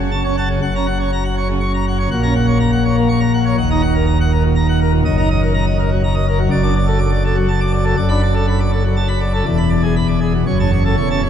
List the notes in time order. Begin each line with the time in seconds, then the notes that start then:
Already playing: F#1 F#2
0.00 C#3
0.11 A5
0.24 C#4 C#5
0.37 F#5 A5
0.50 C#3
0.62 F#1 F#2 F#5
0.76 C#4 A#5
0.87 F#5
0.99 C#5
1.13 A#5
1.24 F#5
1.37 C#5
1.48 C#3
1.61 C#6
1.74 A#5
1.88 F#5
1.99 C#5
2.11 A#1 A#2 F#5
2.23 C#4 A#5
2.35 F#5
2.47 C#5
2.60 A#5
2.72 F#5
2.85 C#5
2.97 A#3
3.09 C#6
3.21 A#5
3.34 F#5
3.46 C#5
3.57 D#1 D#2 F#5
3.71 D#4 A#5
3.82 F#5
3.94 A#4
4.07 A#5
4.20 F#5
4.32 A#4
4.45 A#2
4.56 A#5
4.69 F#5
4.81 A#4
4.92 A#2
5.05 F#1 F#2 D#5
5.18 D#4 A#5
5.30 D#5
5.42 A#4
5.54 A#5
5.66 D#5
5.79 A#4
5.91 F#3
6.04 A#5
6.15 D#5
6.28 A#4
6.39 F#3
6.50 F#1 F#2 D5
6.63 D4 D6
6.76 D5
6.87 A4
6.98 D6
7.12 D5
7.24 A4
7.36 F#3
7.48 A5
7.61 D6
7.72 D5
7.84 A4
7.96 F#1 F#2 D5
8.09 D4 B5
8.22 D5
8.34 A4
8.48 B5
8.60 D5
8.72 A4
8.85 F#3
8.97 A5
9.08 B5
9.21 D5
9.33 A4
9.46 E1 E2 D5
9.58 B5
9.70 D5
9.83 G#4
9.96 B5
10.08 D5
10.21 G#4
10.34 B2
10.46 F#1 F#2 C#5
10.60 C#4 A5
10.71 C#5
10.85 A4
10.97 E1 E2 C#5
11.10 C#4 A5
11.22 C#5